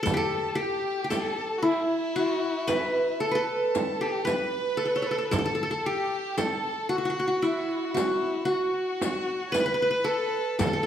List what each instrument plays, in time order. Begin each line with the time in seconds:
0.03 qanun A4, violin A4, violin section A4, riq
0.07 frame drum
0.14 qanun G4 A4
0.21 violin A4
0.55 qanun G4
0.60 violin section G4, violin G4
1.04 qanun G4
1.10 qanun A4, violin section A4, violin A4, riq, frame drum
1.58 violin F#4
1.63 qanun E4, violin section E4, violin E4
2.16 qanun F#4, violin section F#4, riq
2.67 qanun B4, violin section B4, riq, frame drum
3.20 qanun A4, violin section A4, violin A4
3.31 qanun A4 B4
3.37 violin section A4, violin A4
3.75 riq, frame drum
4.01 qanun G4, violin G4
4.25 qanun B4, violin section B4, riq, frame drum
4.29 violin B4
4.77 qanun A4
4.85 qanun A4
4.96 qanun A4, violin C#5
5.02 qanun A4
5.07 violin B4
5.11 qanun A4
5.16 violin A4, qanun A4
5.25 violin B4
5.31 qanun A4, violin A4, violin section A4, riq, frame drum
5.38 qanun A4
5.46 qanun A4
5.55 qanun A4
5.63 qanun A4
5.71 qanun A4
5.85 violin section G4, violin G4, qanun G4
6.37 violin A4, qanun A4, violin section A4, riq, frame drum
6.89 qanun F#4, violin F#4
6.94 violin section F#4, qanun F#4
7.05 qanun F#4
7.10 qanun F#4
7.20 qanun F#4
7.28 qanun F#4
7.42 qanun E4, violin E4, riq
7.53 violin F#4
7.60 violin E4
7.69 violin F#4
7.76 violin E4
7.85 violin F#4
7.91 violin E4, qanun F#4
7.97 violin F#4, riq, frame drum
8.08 violin E4
8.45 qanun F#4
8.50 violin F#4, violin section F#4
9.02 riq, frame drum
9.49 qanun B4, violin section C#5
9.54 violin section B4, violin B4, riq, frame drum
9.60 qanun B4
9.66 qanun B4
9.74 qanun B4
9.82 qanun B4
9.91 qanun B4
10.04 qanun A4, violin A4
10.59 qanun A4, violin section A4, violin A4, riq, frame drum
10.67 qanun A4
10.73 qanun A4
10.83 qanun A4